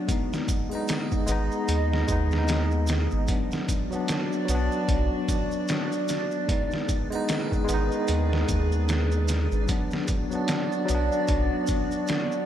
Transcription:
Already playing: F#3 B3 D4
0.07 G#3 B3 D#4 G#4 D#5, kick, closed hi-hat, maracas
0.12 D#4
0.33 snare, maracas
0.48 kick, closed hi-hat, maracas
0.70 G#3 B3, triangle, maracas
0.75 D#4
0.88 snare, closed hi-hat, maracas
1.12 kick, maracas
1.27 G#1 G#3 B3, closed hi-hat, maracas
1.31 D#4
1.52 maracas
1.68 D#2, closed hi-hat, maracas
1.93 snare
2.08 D#2 G#3 B3, kick, closed hi-hat, maracas
2.12 D#4
2.29 G#3, maracas
2.33 B3, snare
2.38 D#4
2.48 snare, closed hi-hat, maracas
2.71 maracas
2.87 snare, closed hi-hat, maracas
3.11 G#1, maracas
3.27 F#3 B3 D4 F#4 D5, kick, closed hi-hat, maracas
3.32 D4
3.52 snare, maracas
3.69 kick, closed hi-hat, maracas
3.90 F#3 B3, maracas
3.95 D4
4.08 snare, closed hi-hat, maracas
4.32 maracas
4.45 B1 F#3, closed hi-hat, maracas
4.50 B3
4.55 D4
4.72 maracas
4.88 B1, kick, closed hi-hat, maracas
5.28 kick, closed hi-hat, maracas
5.52 maracas
5.68 snare, closed hi-hat, maracas
5.92 maracas
6.08 snare, closed hi-hat, maracas
6.31 maracas
6.47 D#3 G#3 B3 G#4 B4, kick, closed hi-hat, maracas
6.52 D#4
6.71 snare, maracas
6.89 kick, closed hi-hat, maracas
7.11 G#3 B3, triangle, maracas
7.15 D#4
7.29 snare, closed hi-hat, maracas
7.52 kick, maracas
7.64 G#3
7.69 G#1 B3, closed hi-hat, maracas
7.74 D#4
7.92 maracas
8.08 D#2, closed hi-hat, maracas
8.33 snare
8.48 D#2, kick, closed hi-hat, maracas
8.72 maracas
8.89 snare, closed hi-hat, maracas
9.12 maracas
9.28 snare, closed hi-hat, maracas
9.52 G#1, maracas
9.67 F#3 B3 D4 F#4 D5, kick, closed hi-hat, maracas
9.71 D4
9.91 snare, maracas
10.08 kick, closed hi-hat, maracas
10.31 F#3 B3, maracas
10.35 D4
10.48 snare, closed hi-hat, maracas
10.72 maracas
10.85 F#3, closed hi-hat, maracas
10.89 B1 B3
10.94 D4
11.12 maracas
11.27 B1, kick, closed hi-hat, maracas
11.67 kick, closed hi-hat, maracas
11.92 maracas
12.07 snare, closed hi-hat, maracas
12.32 maracas

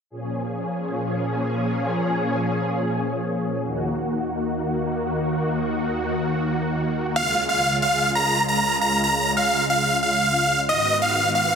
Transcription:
0.10 A#2 F3 C#4 G#4
3.63 D#2 D#3 A#3 F#4
7.16 C#2 C#3 G#3 F4 F5
7.49 F5
7.82 F5
8.15 A#5
8.48 A#5
8.81 A#5
9.04 A#5
9.37 F5
9.70 F5
10.03 F5
10.69 G#2 D#3 B3 F#4 D#5
11.02 F5
11.35 F5

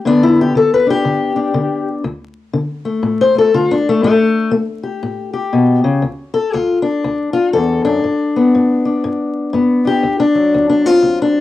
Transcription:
0.05 G2 D3 B3 D4
0.23 E4
0.41 G4
0.55 D3 A4
0.74 B4
0.87 D4 G4
1.05 D3
1.36 D4
1.54 D3
2.04 D2
2.53 D3
2.85 A3
3.03 A2
3.21 C5
3.35 A3 A4
3.54 D3 F4
3.71 D4
3.89 A3
4.03 A2 A3
4.51 A3
4.83 G4
5.03 A2
5.33 G4
5.53 B2
5.84 C#3
6.02 D2
6.34 A4
6.54 D2 F4
6.82 D4
7.04 D2
7.33 F4
7.53 E2 A4
7.85 F#2 D4
8.04 G2
8.36 B3
8.55 G2
8.85 D4
9.04 G2
9.53 G2 B3
9.85 D4 G4
10.03 D2
10.20 D4
10.35 F#3
10.54 D2
10.70 D4
10.85 C4 F4
11.02 D2
11.22 D4

